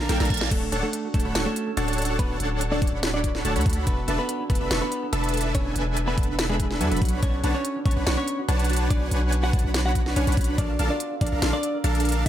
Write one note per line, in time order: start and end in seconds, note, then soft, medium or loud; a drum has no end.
0.00 1.10 F4 medium
0.00 0.36 A#4 medium
0.00 reverse cymbal medium
0.09 0.18 A#1 loud
0.09 0.42 A3 medium
0.09 0.18 D4 loud
0.09 0.57 D4 medium
0.09 0.18 A4 medium
0.09 0.42 A4 loud
0.09 0.18 A#4 medium
0.09 0.18 F5 medium
0.09 0.18 G5 loud
0.09 snare medium
0.09 closed hi-hat medium
0.20 0.28 A#1 loud
0.20 0.28 D4 medium
0.20 0.28 A4 medium
0.20 0.28 A#4 medium
0.20 0.28 F5 medium
0.20 0.28 A#5 loud
0.20 snare medium
0.20 closed hi-hat soft
0.25 closed hi-hat medium
0.30 0.49 A#1 medium
0.30 0.49 D4 loud
0.30 0.49 A4 medium
0.30 1.66 A4 medium
0.30 0.49 A#4 medium
0.30 0.49 F5 medium
0.30 0.49 A#5 loud
0.30 kick loud
0.30 closed hi-hat medium
0.34 closed hi-hat medium
0.37 0.57 D5 medium
0.37 snare medium
0.37 closed hi-hat medium
0.51 0.70 D1 loud
0.51 0.76 A3 medium
0.51 0.72 C#4 medium
0.51 0.63 D4 medium
0.51 0.63 A4 medium
0.51 0.76 A4 loud
0.51 0.63 C#5 medium
0.51 0.63 F#5 medium
0.51 0.63 A5 medium
0.51 kick loud
0.51 closed hi-hat medium
0.51 crash medium
0.72 0.82 D1 loud
0.72 0.89 C#4 medium
0.72 0.84 D4 medium
0.72 0.84 A4 medium
0.72 0.84 C#5 medium
0.72 0.84 F#5 medium
0.72 0.84 A5 loud
0.72 closed hi-hat medium
0.83 1.07 A3 medium
0.83 1.20 D4 loud
0.83 1.07 A4 medium
0.93 closed hi-hat medium
1.04 1.35 F#4 medium
1.14 1.23 D1 loud
1.14 1.38 A3 medium
1.14 1.45 C#4 medium
1.14 1.22 D4 medium
1.14 1.22 A4 medium
1.14 1.39 A4 medium
1.14 1.22 C#5 medium
1.14 1.22 F#5 medium
1.14 1.22 A5 medium
1.14 kick loud
1.14 closed hi-hat soft
1.20 closed hi-hat medium
1.25 1.33 D1 loud
1.25 1.33 D4 medium
1.25 1.33 A4 medium
1.25 1.33 C#5 medium
1.25 1.33 F#5 medium
1.25 1.33 B5 medium
1.35 1.45 D1 loud
1.35 1.47 D4 medium
1.35 1.77 F#4 medium
1.35 1.47 A4 medium
1.35 1.47 C#5 medium
1.35 1.47 F#5 medium
1.35 1.47 C#6 medium
1.35 snare loud
1.35 closed hi-hat medium
1.46 1.70 A3 medium
1.46 2.19 C#4 loud
1.46 1.70 A4 loud
1.56 closed hi-hat medium
1.67 1.98 A4 loud
1.77 2.17 D1 loud
1.77 2.17 D4 loud
1.77 2.08 F#4 medium
1.77 2.17 A4 medium
1.77 2.17 C#5 loud
1.77 2.17 F#5 medium
1.77 2.17 A5 loud
1.77 closed hi-hat medium
1.88 closed hi-hat medium
1.93 closed hi-hat medium
1.98 3.34 A4 loud
1.98 closed hi-hat soft
2.02 closed hi-hat medium
2.05 2.71 F#4 loud
2.05 closed hi-hat medium
2.19 2.38 D1 medium
2.19 2.35 B3 medium
2.19 2.35 B4 medium
2.19 2.38 F#5 medium
2.19 kick loud
2.19 closed hi-hat medium
2.40 2.80 D1 loud
2.40 2.57 C#4 medium
2.40 2.80 D4 medium
2.40 2.80 A4 medium
2.40 2.80 C#5 medium
2.40 2.80 F#5 medium
2.40 2.80 A5 loud
2.40 closed hi-hat medium
2.51 2.88 D4 loud
2.61 closed hi-hat medium
2.72 3.04 D4 medium
2.72 3.03 F#4 medium
2.72 3.04 D5 loud
2.82 2.91 D1 loud
2.82 3.13 C#4 medium
2.82 2.91 D4 loud
2.82 2.91 C#5 medium
2.82 kick loud
2.82 closed hi-hat medium
2.87 closed hi-hat medium
2.93 3.43 D1 loud
2.93 3.43 D4 medium
2.93 3.43 A4 medium
2.93 3.43 C#5 medium
2.93 3.43 F#5 medium
2.93 3.43 B5 loud
3.03 3.45 F#4 medium
3.03 snare loud
3.03 closed hi-hat medium
3.14 4.25 C#4 loud
3.14 3.38 D4 medium
3.14 3.38 D5 loud
3.24 kick medium
3.24 closed hi-hat medium
3.35 3.65 A4 loud
3.35 snare soft
3.45 3.57 D1 loud
3.45 3.78 A3 medium
3.45 3.53 D4 medium
3.45 3.76 F#4 medium
3.45 3.53 A4 medium
3.45 3.78 A4 loud
3.45 3.53 C#5 medium
3.45 3.53 F#5 medium
3.45 3.53 A5 loud
3.45 closed hi-hat medium
3.56 3.64 D2 loud
3.56 3.63 D4 medium
3.56 3.63 A4 medium
3.56 3.63 C#5 medium
3.56 3.63 F#5 medium
3.56 3.63 B5 loud
3.56 closed hi-hat medium
3.61 closed hi-hat medium
3.66 3.85 D2 medium
3.66 3.84 D4 loud
3.66 5.02 A4 loud
3.66 3.84 F#5 medium
3.66 kick loud
3.66 closed hi-hat medium
3.70 closed hi-hat medium
3.73 6.20 F#4 loud
3.73 closed hi-hat medium
3.87 4.06 E1 loud
3.87 4.11 B3 medium
3.87 4.07 B3 medium
3.87 3.99 D4 medium
3.87 3.99 A4 medium
3.87 3.99 B4 medium
3.87 4.11 B4 loud
3.87 3.99 E5 medium
3.87 3.99 A5 medium
3.87 kick loud
3.87 closed hi-hat medium
4.08 4.18 E1 loud
4.08 4.49 B3 medium
4.08 4.20 D4 medium
4.08 4.20 A4 medium
4.08 4.20 B4 medium
4.08 4.20 E5 medium
4.08 4.20 A5 loud
4.08 closed hi-hat medium
4.19 4.43 B3 medium
4.19 5.86 D4 loud
4.19 4.43 B4 medium
4.29 closed hi-hat medium
4.40 4.70 E4 medium
4.50 4.59 E1 loud
4.50 4.74 B3 medium
4.50 4.81 B3 medium
4.50 4.58 D4 medium
4.50 4.58 A4 medium
4.50 4.58 B4 medium
4.50 4.74 B4 medium
4.50 4.58 E5 medium
4.50 4.58 A5 medium
4.50 kick loud
4.50 closed hi-hat soft
4.55 closed hi-hat medium
4.61 4.69 E1 loud
4.61 4.68 D4 medium
4.61 4.68 A4 medium
4.61 4.68 B4 medium
4.61 4.68 E5 medium
4.61 4.68 B5 medium
4.71 4.81 E1 loud
4.71 4.83 D4 medium
4.71 5.12 E4 medium
4.71 4.83 A4 medium
4.71 4.83 B4 medium
4.71 4.83 E5 medium
4.71 4.83 C#6 medium
4.71 snare loud
4.71 closed hi-hat medium
4.82 5.06 B3 medium
4.82 5.54 B3 loud
4.82 5.06 B4 medium
4.92 closed hi-hat medium
5.03 5.33 A4 loud
5.13 5.53 E1 loud
5.13 5.52 D4 loud
5.13 5.44 E4 medium
5.13 5.52 A4 loud
5.13 5.52 B4 loud
5.13 5.52 E5 medium
5.13 5.52 A5 loud
5.13 closed hi-hat medium
5.24 closed hi-hat soft
5.29 closed hi-hat medium
5.34 6.70 A4 loud
5.34 closed hi-hat soft
5.37 closed hi-hat medium
5.41 6.07 E4 loud
5.41 closed hi-hat medium
5.55 5.74 E1 loud
5.55 5.75 B3 medium
5.55 5.71 C#4 medium
5.55 5.73 D4 medium
5.55 5.73 A4 medium
5.55 5.73 B4 medium
5.55 5.71 C#5 medium
5.55 5.73 E5 medium
5.55 5.73 G#5 loud
5.55 kick loud
5.55 closed hi-hat medium
5.76 6.16 E1 loud
5.76 6.17 B3 medium
5.76 6.15 D4 medium
5.76 6.15 A4 medium
5.76 6.15 B4 medium
5.76 6.15 E5 medium
5.76 6.15 G#5 loud
5.76 closed hi-hat medium
5.87 7.12 D4 loud
5.97 closed hi-hat medium
6.08 6.40 B3 medium
6.08 6.38 E4 medium
6.08 6.40 B4 medium
6.18 6.26 E1 loud
6.18 6.49 B3 medium
6.18 6.27 D4 loud
6.18 6.27 A4 medium
6.18 6.27 B4 medium
6.18 6.27 E5 medium
6.18 6.27 A5 loud
6.18 kick loud
6.18 closed hi-hat soft
6.23 closed hi-hat medium
6.29 6.82 E1 loud
6.29 6.79 D4 medium
6.29 6.79 A4 medium
6.29 6.79 B4 medium
6.29 6.79 E5 medium
6.29 6.79 B5 loud
6.39 6.80 E4 medium
6.39 snare loud
6.39 closed hi-hat medium
6.50 6.74 G#3 medium
6.50 7.22 B3 loud
6.50 6.74 G#4 loud
6.60 kick medium
6.60 closed hi-hat medium
6.71 8.90 A4 loud
6.71 snare soft
6.81 6.89 E2 loud
6.81 7.13 F#3 medium
6.81 6.89 D4 loud
6.81 9.42 E4 medium
6.81 7.13 F#4 loud
6.81 6.89 A4 medium
6.81 6.89 B4 medium
6.81 6.89 E5 medium
6.81 6.89 G#5 loud
6.81 closed hi-hat medium
6.92 7.00 E1 loud
6.92 6.99 D4 loud
6.92 6.99 A4 medium
6.92 6.99 B4 medium
6.92 6.99 E5 medium
6.92 6.99 B5 loud
6.92 closed hi-hat soft
6.97 closed hi-hat medium
7.02 7.21 B1 loud
7.02 7.20 D4 loud
7.02 8.38 F#4 loud
7.02 7.20 C#5 medium
7.02 kick loud
7.02 closed hi-hat soft
7.05 closed hi-hat medium
7.09 closed hi-hat medium
7.13 7.61 D4 loud
7.23 7.42 B1 medium
7.23 7.43 B3 medium
7.23 7.47 C#4 medium
7.23 7.35 C#5 medium
7.23 7.47 C#5 loud
7.23 7.35 A5 medium
7.23 kick loud
7.23 closed hi-hat medium
7.44 7.54 B1 loud
7.44 7.85 B3 medium
7.44 7.56 D4 medium
7.44 7.56 B4 medium
7.44 7.56 C#5 medium
7.44 7.56 F#5 medium
7.44 7.56 A5 loud
7.44 closed hi-hat medium
7.54 7.79 C#4 medium
7.54 7.82 C#4 loud
7.54 7.79 C#5 medium
7.65 closed hi-hat medium
7.75 8.06 D4 medium
7.85 7.94 B1 loud
7.85 8.17 B3 medium
7.85 8.10 C#4 medium
7.85 7.94 D4 medium
7.85 7.94 B4 medium
7.85 7.94 C#5 medium
7.85 8.10 C#5 medium
7.85 7.94 F#5 medium
7.85 7.94 A5 medium
7.85 kick loud
7.85 closed hi-hat soft
7.91 closed hi-hat medium
7.96 8.04 B1 medium
7.96 8.04 D4 medium
7.96 8.04 B4 medium
7.96 8.04 C#5 medium
7.96 8.04 F#5 medium
7.96 8.04 B5 medium
8.06 8.16 B1 loud
8.06 8.19 D4 medium
8.06 8.48 D4 medium
8.06 8.19 B4 medium
8.06 8.19 C#5 medium
8.06 8.19 F#5 medium
8.06 8.19 C#6 medium
8.06 snare loud
8.06 closed hi-hat medium
8.17 8.90 B3 loud
8.17 8.42 C#4 medium
8.17 8.41 C#5 loud
8.28 closed hi-hat medium
8.38 8.69 F#4 loud
8.48 8.88 B1 loud
8.48 8.80 D4 medium
8.48 8.88 D4 loud
8.48 8.88 B4 medium
8.48 8.88 C#5 medium
8.48 8.88 F#5 medium
8.48 8.88 A5 loud
8.48 closed hi-hat medium
8.59 closed hi-hat soft
8.64 closed hi-hat medium
8.69 10.06 F#4 loud
8.69 closed hi-hat soft
8.73 closed hi-hat medium
8.76 9.28 D4 loud
8.76 closed hi-hat medium
8.90 9.09 B1 loud
8.90 9.11 B3 medium
8.90 9.07 D4 medium
8.90 9.09 D4 medium
8.90 9.07 D5 medium
8.90 kick loud
8.90 closed hi-hat medium
9.11 9.51 B1 loud
9.11 9.53 B3 medium
9.11 9.51 D4 medium
9.11 9.51 B4 medium
9.11 9.51 C#5 medium
9.11 9.51 F#5 medium
9.11 9.51 G#5 loud
9.11 closed hi-hat medium
9.22 9.49 C#4 loud
9.32 closed hi-hat medium
9.43 9.74 D4 medium
9.43 9.75 F#4 medium
9.43 9.75 F#5 medium
9.53 9.62 B1 loud
9.53 9.85 B3 medium
9.53 9.63 D4 loud
9.53 9.63 B4 medium
9.53 9.63 C#5 loud
9.53 kick loud
9.53 closed hi-hat soft
9.59 closed hi-hat medium
9.64 10.14 B1 loud
9.64 10.14 D4 medium
9.64 10.14 B4 medium
9.64 10.14 C#5 medium
9.64 10.14 F#5 medium
9.64 10.14 B5 loud
9.74 10.16 D4 medium
9.74 snare loud
9.74 closed hi-hat medium
9.85 11.80 B3 loud
9.85 10.09 F#4 medium
9.85 10.09 F#5 loud
9.95 kick medium
9.95 closed hi-hat medium
10.06 10.37 F#4 loud
10.06 snare soft
10.16 10.25 B1 loud
10.16 10.49 C#4 medium
10.16 10.25 D4 loud
10.16 10.48 D4 medium
10.16 10.25 B4 medium
10.16 10.25 C#5 medium
10.16 10.49 C#5 loud
10.16 10.25 F#5 medium
10.16 10.25 G#5 loud
10.16 closed hi-hat medium
10.27 10.35 B1 loud
10.27 10.35 D4 loud
10.27 10.35 B4 medium
10.27 10.35 C#5 medium
10.27 10.35 F#5 medium
10.27 10.35 B5 loud
10.27 closed hi-hat soft
10.32 closed hi-hat medium
10.37 10.56 B1 medium
10.37 10.56 D4 loud
10.37 10.96 F#4 loud
10.37 10.56 B4 medium
10.37 10.56 C#5 medium
10.37 10.56 B5 loud
10.37 kick loud
10.37 closed hi-hat medium
10.41 closed hi-hat medium
10.44 10.58 D4 loud
10.44 closed hi-hat medium
10.58 10.77 A#1 loud
10.58 10.83 D4 medium
10.58 10.79 D4 medium
10.58 10.70 D4 medium
10.58 10.70 A4 medium
10.58 10.70 A#4 medium
10.58 10.83 D5 loud
10.58 10.70 F5 medium
10.58 10.70 A5 medium
10.58 kick loud
10.58 closed hi-hat medium
10.79 10.89 A#1 loud
10.79 11.21 D4 medium
10.79 10.91 D4 medium
10.79 10.91 A4 medium
10.79 10.91 A#4 medium
10.79 10.91 F5 medium
10.79 10.91 A5 loud
10.79 closed hi-hat medium
10.90 11.14 D4 medium
10.90 12.29 F4 loud
10.90 11.14 D5 loud
11.00 closed hi-hat medium
11.11 11.42 A4 medium
11.21 11.30 A#1 loud
11.21 11.53 D4 medium
11.21 11.46 D4 medium
11.21 11.29 D4 medium
11.21 11.29 A4 medium
11.21 11.29 A#4 medium
11.21 11.46 D5 medium
11.21 11.29 F5 medium
11.21 11.29 A5 medium
11.21 kick loud
11.21 closed hi-hat medium
11.27 closed hi-hat medium
11.32 11.40 A#1 loud
11.32 11.40 D4 medium
11.32 11.40 A4 medium
11.32 11.40 A#4 medium
11.32 11.40 F5 medium
11.32 11.40 A#5 medium
11.42 11.52 A#1 loud
11.42 11.54 D4 medium
11.42 11.54 A4 medium
11.42 11.80 A4 medium
11.42 11.54 A#4 medium
11.42 11.54 F5 medium
11.42 11.54 C6 medium
11.42 snare loud
11.42 closed hi-hat medium
11.53 11.77 D4 medium
11.53 12.29 D4 loud
11.53 11.77 D5 loud
11.63 closed hi-hat medium
11.74 11.90 A#4 loud
11.84 12.24 A#1 loud
11.84 12.24 D4 loud
11.84 12.24 A4 medium
11.84 12.11 A4 medium
11.84 12.24 A#4 medium
11.84 12.24 F5 medium
11.84 12.24 A5 loud
11.84 closed hi-hat medium
11.95 closed hi-hat soft
12.00 closed hi-hat medium
12.05 12.22 A#4 loud
12.05 closed hi-hat medium
12.09 closed hi-hat medium
12.12 12.29 A4 loud
12.12 closed hi-hat medium